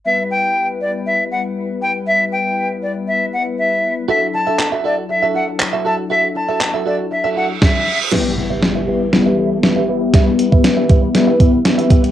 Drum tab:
CC |----------------|----------------|----------------|----------------|
HH |----------------|----------------|----------------|----------------|
CP |----------------|----------------|----x-------x---|----x-----------|
SD |----------------|----------------|----------------|------------o---|
BD |----------------|----------------|----------------|------------o---|

CC |x---------------|----------------|
HH |----------------|x-x-x-x-x-x-xxxx|
CP |----------------|----------------|
SD |o---o---o---o---|o---o---o---o---|
BD |----------------|o--o--o---o---o-|